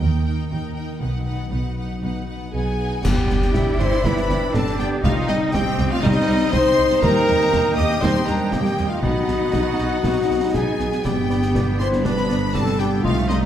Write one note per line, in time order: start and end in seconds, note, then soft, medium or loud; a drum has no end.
0.00 0.44 D#2 medium
0.00 0.43 D#3 medium
0.00 1.04 D#3 soft
0.00 1.04 G3 soft
0.00 0.17 A#3 soft
0.00 0.34 D#4 soft
0.00 0.25 D#4 soft
0.00 0.51 G4 soft
0.00 0.67 A#4 soft
0.00 0.24 A#4 soft
0.00 0.24 G5 medium
0.18 1.04 A#3 soft
0.25 0.51 D#4 soft
0.25 0.48 A#4 soft
0.25 0.49 G5 soft
0.35 1.51 D#4 soft
0.49 0.94 D#2 medium
0.49 0.94 D#3 medium
0.49 0.76 D#4 soft
0.49 0.83 G4 soft
0.49 0.74 A#4 soft
0.49 0.74 G5 soft
0.68 1.04 A#4 soft
0.75 1.00 D#4 soft
0.75 1.01 A#4 soft
0.75 1.01 G5 soft
0.85 1.04 G4 soft
1.00 1.44 B1 soft
1.00 1.44 B2 medium
1.00 2.02 B2 soft
1.00 1.26 D#4 soft
1.00 1.25 B4 soft
1.00 1.25 F#5 soft
1.19 2.19 F#3 soft
1.26 1.51 D#4 soft
1.26 1.49 B4 soft
1.26 1.50 F#5 soft
1.36 2.36 B3 soft
1.50 1.95 B1 soft
1.50 1.95 B2 soft
1.50 1.77 D#4 soft
1.50 1.85 D#4 soft
1.50 1.75 B4 soft
1.50 1.77 F#5 soft
1.69 2.70 F#4 soft
1.76 2.01 D#4 soft
1.76 2.01 B4 soft
1.76 2.02 F#5 soft
1.86 2.53 D#4 soft
2.02 2.46 B1 soft
2.02 2.46 B2 soft
2.02 3.08 B2 soft
2.02 2.27 D#4 soft
2.02 2.26 B4 soft
2.02 2.27 F#5 soft
2.20 3.07 F#3 soft
2.27 2.52 D#4 soft
2.27 2.52 B4 soft
2.27 2.54 F#5 soft
2.37 3.29 B3 soft
2.52 2.97 B1 soft
2.52 2.97 B2 soft
2.52 3.01 B3 medium
2.52 2.79 D#4 soft
2.52 2.87 D#4 soft
2.52 3.01 G#4 medium
2.52 3.02 G#4 medium
2.52 2.78 B4 soft
2.52 2.78 F#5 soft
2.52 3.01 G#5 medium
2.52 3.02 G#5 medium
2.71 3.07 F#4 soft
2.79 3.05 D#4 soft
2.79 3.04 B4 soft
2.79 3.04 F#5 soft
2.88 3.07 D#4 soft
3.04 3.13 G1 medium
3.04 5.06 G2 medium
3.04 3.51 B3 medium
3.04 3.78 B3 medium
3.04 3.29 B3 medium
3.04 5.00 D4 medium
3.04 3.80 G4 medium
3.04 3.79 G4 medium
3.04 5.00 D5 medium
3.04 3.80 G5 medium
3.04 3.78 G5 medium
3.04 6.99 G5 medium
3.04 concert bass drum medium
3.04 snare medium
3.04 crash medium
3.30 3.38 G1 medium
3.30 4.28 B3 medium
3.30 3.38 B3 medium
3.30 snare medium
3.42 snare medium
3.55 3.63 G1 medium
3.55 3.63 B3 medium
3.55 4.55 E4 medium
3.55 4.53 G4 medium
3.55 concert bass drum medium
3.55 snare medium
3.79 3.87 G1 medium
3.79 3.87 B3 medium
3.79 4.04 E4 medium
3.79 4.78 B4 medium
3.79 4.05 C5 medium
3.79 4.05 C5 loud
3.79 3.87 C6 medium
3.79 4.05 C6 medium
3.79 snare soft
3.92 snare soft
4.03 4.13 G1 medium
4.03 5.06 D3 medium
4.03 4.27 B3 medium
4.03 4.54 D4 medium
4.03 4.54 B4 medium
4.03 4.54 B5 medium
4.03 4.55 B5 medium
4.03 concert bass drum medium
4.03 snare medium
4.17 snare medium
4.29 4.38 G1 medium
4.29 4.37 B3 medium
4.29 5.06 B3 medium
4.29 snare medium
4.53 4.63 G1 medium
4.53 4.62 B3 medium
4.53 4.78 C4 medium
4.53 5.04 D4 medium
4.53 5.53 G4 medium
4.53 4.79 A4 loud
4.53 4.79 A4 medium
4.53 4.79 A5 medium
4.53 4.80 A5 medium
4.53 concert bass drum medium
4.53 snare medium
4.67 snare soft
4.78 4.88 G1 medium
4.78 5.02 B3 medium
4.78 4.88 B3 medium
4.78 5.03 G4 medium
4.78 5.04 G4 loud
4.78 5.06 B4 medium
4.78 4.87 G5 medium
4.78 snare soft
5.03 5.12 C2 medium
5.03 7.05 C3 medium
5.03 5.27 G3 medium
5.03 5.15 A3 medium
5.03 5.53 D#4 medium
5.03 9.02 D#4 medium
5.03 5.28 F4 medium
5.03 5.29 F4 loud
5.03 8.98 D#5 medium
5.03 5.28 F5 medium
5.03 5.13 F5 medium
5.03 concert bass drum medium
5.28 5.38 C2 medium
5.28 5.55 G3 medium
5.28 5.38 G3 medium
5.28 6.28 C4 medium
5.28 5.53 D#4 medium
5.28 5.54 D#4 medium
5.28 5.36 D#5 medium
5.28 5.54 D#5 medium
5.28 snare medium
5.53 5.63 C2 medium
5.53 5.63 G3 medium
5.53 5.93 C4 loud
5.53 7.03 C4 loud
5.53 5.90 G4 loud
5.53 6.53 G4 medium
5.53 5.91 G4 loud
5.53 5.90 G5 loud
5.53 5.90 G5 medium
5.53 concert bass drum medium
5.53 snare medium
5.79 5.88 C2 medium
5.79 5.88 G3 medium
5.79 6.76 C5 medium
5.79 snare medium
5.91 6.03 A3 medium
5.91 6.03 F4 medium
5.91 6.04 F4 loud
5.91 6.04 F5 medium
5.91 6.03 F5 medium
6.02 6.12 C2 loud
6.02 6.52 G3 loud
6.02 9.05 G3 medium
6.02 6.27 G3 loud
6.02 6.52 D#4 loud
6.02 6.53 D#4 loud
6.02 6.52 D#5 medium
6.02 6.53 D#5 loud
6.02 concert bass drum medium
6.02 snare medium
6.29 6.37 C2 medium
6.29 6.37 G3 medium
6.29 7.05 C4 medium
6.53 6.62 C2 medium
6.53 6.62 G3 medium
6.53 7.02 D#4 loud
6.53 9.05 G4 medium
6.53 7.02 C5 loud
6.53 7.03 C6 loud
6.53 7.02 C6 loud
6.53 concert bass drum medium
6.53 snare medium
6.78 6.87 C2 medium
6.78 6.86 G3 medium
6.78 7.05 C5 medium
6.78 snare medium
6.90 snare medium
7.01 7.11 D#2 loud
7.01 9.05 D#3 medium
7.01 7.51 G3 loud
7.01 7.26 G3 medium
7.01 7.76 D#4 loud
7.01 7.76 A#4 loud
7.01 8.98 G5 loud
7.01 7.76 A#5 loud
7.01 7.78 A#5 loud
7.01 concert bass drum medium
7.01 snare medium
7.01 crash soft
7.28 7.36 D#2 medium
7.28 7.37 G3 medium
7.28 8.26 D#4 medium
7.28 snare medium
7.41 snare medium
7.51 7.60 D#2 medium
7.51 7.62 G3 medium
7.51 8.02 A#3 medium
7.51 8.52 A#4 medium
7.51 concert bass drum medium
7.51 snare medium
7.76 7.86 D#2 medium
7.76 7.86 G3 medium
7.76 8.03 G4 loud
7.76 8.01 D#5 loud
7.76 8.02 D#5 loud
7.76 8.77 D#5 medium
7.76 8.02 D#6 loud
7.76 8.01 D#6 medium
7.76 snare medium
7.90 snare soft
8.01 8.10 D#2 loud
8.01 9.00 G3 loud
8.01 8.26 G3 medium
8.01 9.05 A#3 medium
8.01 8.26 D#4 loud
8.01 8.27 C5 loud
8.01 8.14 C5 loud
8.01 8.27 C6 medium
8.01 8.28 C6 loud
8.01 concert bass drum medium
8.01 snare medium
8.15 snare medium
8.26 8.35 D#2 medium
8.26 8.35 G3 medium
8.26 8.53 D4 medium
8.26 9.78 D#4 medium
8.26 8.52 A#4 medium
8.26 8.52 A#5 medium
8.26 snare medium
8.51 8.60 D#2 medium
8.51 8.60 G3 medium
8.51 8.90 A#3 medium
8.51 8.89 G4 medium
8.51 8.90 G4 medium
8.51 9.05 A#4 medium
8.51 8.90 G5 medium
8.51 concert bass drum medium
8.51 snare medium
8.65 snare medium
8.77 8.85 D#2 medium
8.77 8.86 G3 medium
8.77 11.07 D#5 medium
8.77 snare soft
8.89 9.01 A3 medium
8.89 9.02 F4 medium
8.89 9.02 F5 medium
8.89 9.03 F5 medium
9.01 9.11 B1 medium
9.01 11.07 B2 medium
9.01 10.23 B3 medium
9.01 9.26 B3 medium
9.01 10.76 D#4 medium
9.01 10.81 D#4 medium
9.01 10.51 F#4 medium
9.01 10.51 F#4 loud
9.01 10.76 D#5 medium
9.01 10.54 F#5 medium
9.01 10.51 F#5 medium
9.01 10.76 B5 medium
9.01 concert bass drum medium
9.28 9.36 B1 medium
9.28 9.37 B3 medium
9.28 10.28 B3 medium
9.28 snare medium
9.53 9.62 B1 soft
9.53 9.61 B3 soft
9.53 10.53 B4 medium
9.53 concert bass drum medium
9.53 snare medium
9.79 9.87 B1 medium
9.79 9.87 B3 medium
9.79 10.79 D#4 medium
9.79 snare medium
10.04 10.12 B1 medium
10.04 11.07 F#3 soft
10.04 10.28 B3 medium
10.04 concert bass drum medium
10.04 snare medium
10.29 10.38 B1 medium
10.29 10.37 B3 medium
10.29 11.29 B3 medium
10.53 10.63 B1 medium
10.53 11.01 B3 medium
10.53 10.62 B3 medium
10.53 11.04 G#4 medium
10.53 11.54 B4 medium
10.53 11.04 G#5 medium
10.53 concert bass drum medium
10.53 snare medium
10.79 10.88 B1 soft
10.79 10.87 B3 medium
10.79 11.07 D#4 soft
10.79 snare medium
10.92 snare medium
11.04 13.01 G1 medium
11.04 13.07 G2 medium
11.04 12.00 B3 medium
11.04 11.82 B3 medium
11.04 13.01 B3 medium
11.04 13.01 D4 medium
11.04 11.63 G4 medium
11.04 11.78 G4 medium
11.04 11.15 D5 medium
11.04 11.78 G5 medium
11.04 11.80 G5 medium
11.04 11.10 B5 medium
11.04 concert bass drum medium
11.04 snare medium
11.04 crash soft
11.29 12.28 B3 medium
11.29 11.41 D5 medium
11.29 11.35 B5 medium
11.29 snare soft
11.43 snare medium
11.54 12.54 B4 medium
11.54 11.66 D5 medium
11.54 11.60 B5 medium
11.54 concert bass drum medium
11.54 snare medium
11.78 12.78 D4 medium
11.78 12.06 E4 medium
11.78 12.04 C5 loud
11.78 12.05 C5 medium
11.78 11.91 D5 medium
11.78 11.85 B5 medium
11.78 11.86 C6 medium
11.78 11.87 C6 medium
11.78 snare soft
11.93 snare medium
12.04 13.07 D3 medium
12.04 13.05 G3 medium
12.04 12.54 D4 medium
12.04 12.54 B4 medium
12.04 12.55 B4 medium
12.04 12.16 D5 medium
12.04 12.53 B5 medium
12.04 12.54 B5 medium
12.04 12.10 B5 medium
12.04 concert bass drum medium
12.04 snare medium
12.17 snare medium
12.28 13.07 B3 medium
12.28 12.40 D5 medium
12.28 12.35 B5 medium
12.28 snare medium
12.54 12.79 C4 medium
12.54 12.80 A4 loud
12.54 12.80 A4 medium
12.54 13.07 B4 medium
12.54 12.66 D5 medium
12.54 12.79 A5 medium
12.54 12.80 A5 medium
12.54 12.61 B5 medium
12.54 concert bass drum medium
12.54 snare medium
12.67 snare medium
12.79 13.07 B3 medium
12.79 13.07 D4 medium
12.79 13.05 G4 medium
12.79 12.91 D5 medium
12.79 13.04 G5 medium
12.79 12.88 G5 medium
12.79 12.85 B5 medium
12.79 snare medium
13.03 13.46 C2 medium
13.03 13.46 C3 medium
13.03 13.46 A3 medium
13.03 13.30 A3 loud
13.03 13.46 C4 medium
13.03 13.46 D#4 medium
13.03 13.28 F4 loud
13.03 13.29 F4 medium
13.03 13.16 D#5 medium
13.03 13.29 F5 medium
13.03 13.10 C6 medium
13.03 concert bass drum medium
13.28 13.46 G3 medium
13.28 13.46 C4 medium
13.28 13.46 D#4 medium
13.28 13.41 D#4 medium
13.28 13.37 D#5 medium
13.28 13.46 D#5 medium
13.28 13.41 D#5 medium
13.28 13.34 C6 medium
13.28 snare medium